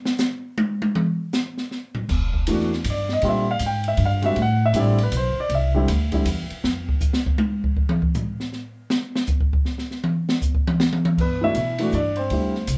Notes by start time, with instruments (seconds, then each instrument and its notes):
0.05 snare
0.18 snare, hi-hat pedal
0.58 high tom
0.82 high tom
0.95 mid tom
1.33 snare, hi-hat pedal
1.58 snare
1.71 snare
1.95 muted upright bass stroke, floor tom
2.09 upright bass E1, kick, snare, crash
2.33 kick
2.47 upright bass E2, grand piano E3 A3 D4 F#4, hi-hat pedal, ride
2.60 snare
2.73 snare
2.84 upright bass G2, hi-hat pedal, ride
2.90 grand piano D5
3.09 grand piano D#5, snare
3.22 upright bass A#2, grand piano D3 G3 C4 F4, ride
3.29 grand piano E5
3.51 grand piano F5
3.59 upright bass G#2, hi-hat pedal, ride
3.66 grand piano G5
3.84 ride
3.88 grand piano E5
3.97 upright bass G2, ride
4.05 grand piano F5
4.22 grand piano D3 G3 C4 F#4 E5, ride
4.36 upright bass A2, ride
4.42 grand piano F#5
4.66 grand piano E5
4.73 upright bass A1, grand piano D3 G3 C4 E4, hi-hat pedal, ride
4.80 grand piano D5
4.98 ride
5.03 grand piano B4
5.12 upright bass B1, hi-hat pedal, ride
5.17 grand piano C5
5.36 muted upright bass stroke
5.40 grand piano D5
5.49 upright bass C2, ride
5.55 grand piano E5
5.74 grand piano D3 G3 C4 E4
5.88 upright bass D2, hi-hat pedal, ride
6.12 grand piano D3 G3 C4 E4, kick, ride
6.25 upright bass E2, hi-hat pedal, ride
6.50 muted upright bass stroke, ride
6.64 upright bass F2, snare
6.89 kick
7.00 kick, hi-hat pedal
7.13 snare
7.26 kick
7.38 high tom
7.64 kick
7.77 kick
7.89 mid tom
8.02 kick
8.14 floor tom, hi-hat pedal
8.40 snare
8.53 snare
8.90 snare
9.15 snare
9.27 kick, hi-hat pedal
9.41 kick
9.53 kick
9.65 snare
9.78 snare
9.91 snare
10.04 mid tom
10.29 snare
10.42 kick, hi-hat pedal
10.55 kick
10.67 mid tom
10.80 snare
10.93 mid tom
11.05 mid tom
11.17 upright bass G2, grand piano B3 B4, kick, crash
11.41 grand piano E3 A3 D4 E4 F#4 E5
11.55 upright bass B2, hi-hat pedal, ride
11.78 grand piano E3 A3 D4 F#4, ride
11.92 upright bass G2, grand piano D4 D5, hi-hat pedal
12.16 grand piano C4 C5, ride
12.30 upright bass D2, grand piano D3 G3 C4 E4, ride
12.55 snare
12.67 upright bass C2, hi-hat pedal, ride